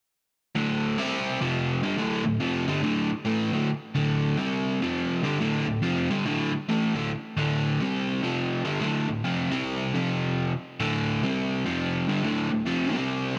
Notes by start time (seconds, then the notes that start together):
0.55 D2 A2 D3
0.98 C3 G3 C4
1.41 F2 C3 F3
1.83 G2 D3 G3
1.98 D2 A2 D3
2.24 D2 A2
2.40 F2 C3 F3
2.68 G2 D3 G3
2.82 D2 A2 D3
3.10 muted overdriven electric guitar stroke
3.25 A2 E3 A3
3.53 D2 A2 D3
3.95 D2 A2 D3
4.38 C3 G3 C4
4.82 F2 C3 F3
5.23 G2 D3 G3
5.40 D2 A2 D3
5.67 D2 A2
5.82 F2 C3 F3
6.10 G2 D3 G3
6.25 D2 A2 D3
6.52 muted overdriven electric guitar stroke
6.69 A2 E3 A3
6.94 D2 A2 D3
7.37 D2 A2 D3
7.81 C3 G3 C4
8.23 F2 C3 F3
8.65 G2 D3 G3
8.81 D2 A2 D3
9.09 D2 A2
9.24 F2 C3 F3
9.51 C3 G3 C4
9.94 F2 C3 F3
10.80 D2 A2 D3
11.23 C3 G3 C4
11.66 F2 C3 F3
12.08 G2 D3 G3
12.24 D2 A2 D3
12.50 D2 A2
12.66 F2 C3 F3
12.94 C3 G3 C4